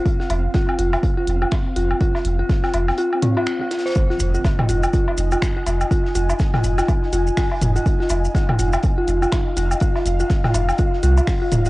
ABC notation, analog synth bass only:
X:1
M:4/4
L:1/8
Q:"Swing 16ths" 1/4=123
K:Fm
V:1 name="Analog synth bass" clef=bass
z F,,, z F,,, z F,,, z F,,, | z F,,, z F,,, z4 | z F,,, z F,,, z F,,, z F,,, | z F,,, z F,,, z F,,, z F,,, |
z F,,, z F,,, z F,,, z F,,, | z F,,, z F,,, z C,, z E,,, |]